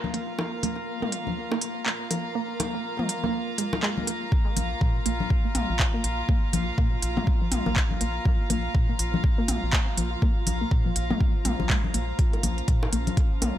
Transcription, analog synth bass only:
4.57 4.75 A#1 loud
4.81 5.00 A#2 medium
5.06 5.24 A#1 medium
5.55 5.65 A#1 medium
5.69 5.85 A#1 loud
6.04 6.23 A#1 medium
6.53 6.72 A#1 loud
6.78 6.96 A#2 medium
7.02 7.21 A#1 medium
7.52 7.62 A#1 medium
7.66 7.82 A#1 loud
8.01 8.19 A#1 medium
8.50 8.69 A#1 loud
8.75 8.93 A#2 medium
8.99 9.18 A#1 medium
9.48 9.59 A#1 medium
9.63 9.79 A#1 loud
9.98 10.16 A#1 medium
10.47 10.65 A#1 loud
10.71 10.90 A#2 medium
10.96 11.14 A#1 medium
11.45 11.55 A#1 medium
11.60 11.75 A#1 medium
11.94 12.13 A#1 medium
12.43 12.62 A#1 loud
12.68 12.87 A#2 medium
12.93 13.11 A#1 medium
13.42 13.52 A#1 medium

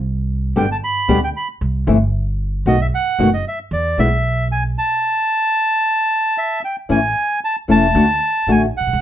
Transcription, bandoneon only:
0.58 0.69 G5 medium
0.72 0.77 A5 medium
0.84 1.20 B5 medium
1.24 1.30 G5 medium
1.37 1.48 B5 medium
2.68 2.81 D#5 medium
2.81 2.87 E5 medium
2.95 3.30 F#5 medium
3.34 3.45 D#5 medium
3.48 3.59 E5 medium
3.73 3.99 D5 medium
3.99 4.48 E5 medium
4.52 4.64 G#5 medium
4.78 6.60 A5 loud
6.38 6.62 E5 medium
6.65 6.76 G5 medium
6.91 7.40 G#5 medium
7.44 7.56 A5 medium
7.71 8.51 A5 medium
8.51 8.62 G#5 medium
8.77 9.01 F#5 medium

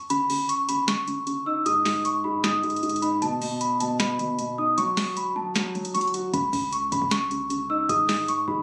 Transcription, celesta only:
0.10 0.47 B5 loud
0.49 0.65 C#6 medium
0.69 0.84 B5 medium
0.88 1.43 C#6 medium
1.46 1.62 E6 medium
1.66 2.02 D#6 loud
2.05 2.21 C#6 medium
2.24 2.40 B5 medium
2.44 2.99 D#6 medium
3.02 3.18 B5 medium
3.22 3.59 A5 loud
3.61 3.76 B5 medium
3.80 3.96 A5 medium
4.00 4.55 B5 medium
4.58 4.74 D#6 medium
4.78 5.14 C#6 loud
5.17 5.32 B5 medium
5.36 5.91 A5 medium
5.94 6.10 C#6 medium
6.34 6.70 B5 loud
6.72 6.88 C#6 medium
6.92 7.08 B5 medium
7.11 7.66 C#6 medium
7.70 7.85 E6 medium
7.89 8.26 D#6 loud
8.28 8.44 C#6 medium
8.48 8.63 B5 medium

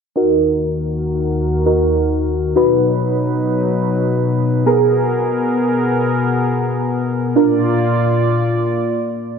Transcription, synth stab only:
0.16 1.63 D#4 medium
0.16 1.63 F#4 medium
0.16 1.63 A#4 medium
1.66 2.54 D#4 medium
1.66 2.55 F#4 soft
1.66 2.56 A#4 medium
2.56 4.62 D#4 medium
2.56 4.62 F#4 medium
2.56 4.62 B4 medium
4.66 7.02 B3 medium
4.66 7.02 G#4 medium
4.66 7.02 A#4 medium
7.36 9.39 D4 medium
7.36 9.39 F4 medium
7.36 9.39 A#4 medium

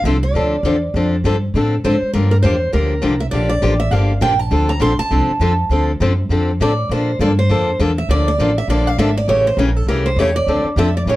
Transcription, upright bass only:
0.04 0.33 C2 medium
0.34 0.62 D2 medium
0.63 0.93 E2 medium
0.94 1.23 F2 medium
1.24 1.53 G2 medium
1.54 1.83 A2 medium
1.84 2.00 G#2 medium
2.01 muted upright bass stroke soft
2.14 2.42 G2 medium
2.43 2.72 E2 medium
2.73 3.02 D2 medium
3.03 3.32 C2 medium
3.33 3.62 A#1 medium
3.62 3.90 A1 medium
3.91 4.20 G1 medium
4.21 4.50 A#1 medium
4.51 4.79 D2 medium
4.80 4.97 A#1 medium
4.99 muted upright bass stroke soft
5.11 5.27 C2 medium
5.28 muted upright bass stroke soft
5.40 5.69 F2 medium
5.69 5.99 D2 medium
6.00 6.29 F#2 medium
6.29 6.59 F2 medium
6.60 6.89 A2 medium
6.89 7.19 A#2 medium
7.19 7.48 G2 medium
7.50 7.78 F2 medium
7.79 8.08 E2 medium
8.09 8.38 D2 medium
8.38 8.67 A1 medium
8.68 8.97 A#1 medium
8.98 9.27 G#1 medium
9.28 9.56 A1 medium
9.57 9.86 A#1 medium
9.87 10.16 C2 medium
10.16 10.46 E2 medium
10.47 10.63 D2 medium
10.64 muted upright bass stroke soft
10.76 11.05 F2 medium
11.06 11.16 A2 medium

